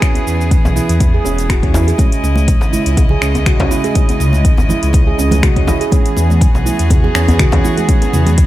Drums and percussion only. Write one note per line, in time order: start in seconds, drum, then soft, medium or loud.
0.02 finger snap medium
0.02 kick loud
0.02 closed hi-hat medium
0.02 shaker medium
0.15 closed hi-hat soft
0.15 djembe tone medium
0.15 shaker soft
0.27 shaker medium
0.41 shaker soft
0.51 kick loud
0.51 closed hi-hat medium
0.51 shaker medium
0.65 djembe slap medium
0.65 djembe bass medium
0.65 shaker soft
0.76 djembe tone medium
0.76 shaker medium
0.89 closed hi-hat soft
0.89 shaker soft
1.00 kick loud
1.00 closed hi-hat medium
1.00 shaker medium
1.25 djembe tone medium
1.25 shaker loud
1.38 closed hi-hat soft
1.38 shaker soft
1.49 finger snap medium
1.49 kick loud
1.49 closed hi-hat medium
1.49 djembe tone medium
1.49 shaker medium
1.63 kick medium
1.63 closed hi-hat soft
1.74 djembe slap loud
1.74 djembe bass medium
1.74 shaker medium
1.88 closed hi-hat soft
1.88 shaker soft
1.98 kick loud
1.98 closed hi-hat medium
1.98 high conga medium
1.98 shaker medium
2.12 closed hi-hat soft
2.12 shaker soft
2.24 muted conga soft
2.24 shaker medium
2.36 high conga medium
2.36 shaker soft
2.48 kick loud
2.48 closed hi-hat medium
2.48 shaker soft
2.61 djembe slap medium
2.61 muted conga soft
2.61 shaker soft
2.73 high conga medium
2.73 shaker medium
2.86 closed hi-hat soft
2.86 shaker soft
2.97 kick loud
2.97 closed hi-hat medium
2.97 mid tom medium
2.97 muted conga medium
2.97 djembe tone medium
2.97 shaker medium
3.09 low conga medium
3.22 finger snap medium
3.22 shaker medium
3.34 closed hi-hat soft
3.34 muted conga soft
3.34 djembe tone medium
3.34 djembe bass medium
3.34 shaker soft
3.46 finger snap medium
3.46 kick loud
3.46 closed hi-hat medium
3.46 mid tom medium
3.46 shaker medium
3.60 kick medium
3.60 closed hi-hat soft
3.60 djembe slap loud
3.71 muted conga soft
3.71 djembe tone medium
3.71 shaker medium
3.84 closed hi-hat soft
3.84 high conga medium
3.84 shaker soft
3.95 kick loud
3.95 closed hi-hat medium
3.95 high conga medium
3.95 shaker soft
4.09 closed hi-hat soft
4.09 djembe tone medium
4.09 shaker soft
4.20 mid tom medium
4.20 muted conga medium
4.20 shaker medium
4.33 high conga medium
4.33 shaker soft
4.45 kick loud
4.45 closed hi-hat medium
4.45 shaker soft
4.58 muted conga soft
4.58 djembe slap medium
4.58 djembe bass medium
4.58 shaker soft
4.69 high conga medium
4.69 low conga medium
4.69 shaker medium
4.83 closed hi-hat soft
4.83 shaker soft
4.93 kick loud
4.93 closed hi-hat medium
4.93 muted conga soft
4.93 shaker soft
5.18 djembe tone medium
5.18 shaker medium
5.31 closed hi-hat soft
5.31 muted conga soft
5.31 high conga loud
5.31 low conga loud
5.31 shaker soft
5.43 finger snap medium
5.43 kick loud
5.43 closed hi-hat medium
5.43 mid tom loud
5.43 djembe tone medium
5.43 shaker medium
5.56 kick medium
5.56 closed hi-hat soft
5.67 muted conga soft
5.67 djembe slap medium
5.67 djembe bass medium
5.67 low conga medium
5.67 shaker medium
5.81 closed hi-hat soft
5.81 shaker soft
5.92 kick loud
5.92 closed hi-hat medium
5.92 high conga medium
5.92 shaker soft
6.06 closed hi-hat soft
6.06 shaker soft
6.17 muted conga medium
6.17 shaker medium
6.30 high conga medium
6.30 shaker soft
6.41 kick loud
6.41 closed hi-hat medium
6.41 shaker soft
6.55 djembe slap medium
6.55 muted conga soft
6.55 shaker soft
6.66 high conga medium
6.66 shaker medium
6.79 closed hi-hat soft
6.79 shaker soft
6.90 kick loud
6.90 closed hi-hat medium
6.90 mid tom medium
6.90 muted conga soft
6.90 djembe tone medium
6.90 shaker soft
7.04 low conga medium
7.15 finger snap medium
7.15 shaker medium
7.28 closed hi-hat soft
7.28 muted conga soft
7.28 djembe tone medium
7.28 djembe bass loud
7.28 shaker soft
7.39 finger snap medium
7.39 kick loud
7.39 closed hi-hat medium
7.39 mid tom loud
7.39 shaker soft
7.52 kick medium
7.52 closed hi-hat soft
7.52 djembe slap loud
7.64 muted conga medium
7.64 djembe tone medium
7.64 shaker medium
7.78 closed hi-hat soft
7.78 high conga medium
7.78 shaker soft
7.89 kick loud
7.89 closed hi-hat medium
7.89 high conga medium
7.89 shaker medium
8.02 closed hi-hat soft
8.02 djembe tone medium
8.02 shaker soft
8.13 mid tom medium
8.13 muted conga medium
8.13 shaker medium
8.26 closed hi-hat soft
8.26 high conga medium
8.26 low conga medium
8.26 shaker soft
8.38 kick loud
8.38 closed hi-hat medium
8.38 shaker medium